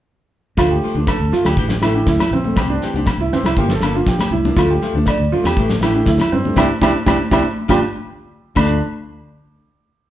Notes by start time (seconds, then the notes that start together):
0.57 D2 F3 A3 D4 F4, kick, snare, low agogo
0.71 G4
0.83 F3 A3 D4
0.95 D2 A3 D4, high conga
1.07 A4, kick, snare, low agogo
1.20 D2
1.32 F3 A3 F4, snare, low conga
1.45 D2 G4, snare, low agogo
1.57 A1 E3 D4 G4, muted nylon-string guitar stroke, kick
1.69 snare, high conga
1.82 A1 E3 A3 D4 E4 G4, snare, low agogo
1.95 A3 D4 G4
2.06 D2 E4, kick, snare
2.20 snare, high conga, low agogo
2.31 A#1 C4, low conga
2.44 A3, muted nylon-string guitar stroke, high conga
2.56 C2 C4 D4 G4, muted nylon-string guitar stroke, kick, snare, low agogo
2.70 D4
2.82 E3 C4 D4 G4, snare
2.94 C2 C4 D4 G4, high conga
3.06 kick, snare, low agogo
3.18 C2 E4
3.32 E3 C4 D4 G4, snare, low conga
3.43 C2 E4, snare, low agogo
3.56 G1 F3 A#3 D4 G4, kick
3.69 A4, snare
3.81 G1 F3 A#3 D4, snare, low agogo
3.96 A#3 D4 F4
4.06 A#1 G4, kick, snare
4.19 snare, high conga, low agogo
4.31 C2 E4, low conga
4.45 A#3 D4, high conga
4.56 D2 F3 A3 D4 F4, kick, snare, low agogo
4.70 G4
4.82 F3 A3 D4, snare
4.94 D2 A3 D4, high conga
5.06 D5, kick, snare, low agogo
5.19 D2
5.32 F3 A3 D4 F4, low conga
5.44 E2 G4, snare, low agogo
5.56 A1 E3 A3 D4 G4, kick
5.69 snare, high conga
5.81 A1 E3 A3 D4 E4 G4, snare, low agogo
5.95 A3 D4 G4
6.06 D2 E4, kick, snare
6.18 snare, high conga, low agogo
6.32 G2 C4, low conga
6.45 A3 D4, high conga
6.56 C2 C4 D4 E4 G4, kick, snare, high conga, low agogo
6.81 C2 C4 D4 E4 G4, kick, snare, high conga, low agogo
7.06 C2 C4 D4 E4 G4, kick, snare, high conga, low agogo
7.31 C2 C4 D4 E4 G4, kick, snare, high conga, low agogo
7.68 G1 D4 F4 G4, kick, snare, high conga, low agogo
8.55 D2 F3 A3 D4, kick, crash, high conga, low agogo